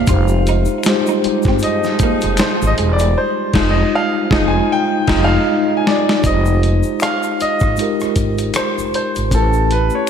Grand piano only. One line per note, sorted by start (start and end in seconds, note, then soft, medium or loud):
0.00 0.83 F5 medium
1.63 2.42 D#5 medium
2.40 2.66 C5 medium
2.67 2.72 D#5 medium
2.93 3.18 D5 medium
3.18 3.69 C5 medium
3.70 3.95 D#5 medium
3.95 4.47 F5 loud
4.48 4.72 G#5 loud
4.72 5.24 G5 loud
5.24 5.70 F5 loud
5.77 6.22 G#5 medium
5.87 6.18 D5 medium
6.20 6.25 D5 medium
6.26 7.04 D#5 medium
7.02 7.41 F5 loud
7.42 8.59 D#5 loud
8.56 8.94 C5 medium
8.95 9.34 C5 medium
9.35 9.69 A4 medium
9.72 9.93 B4 medium
9.95 10.10 C#5 medium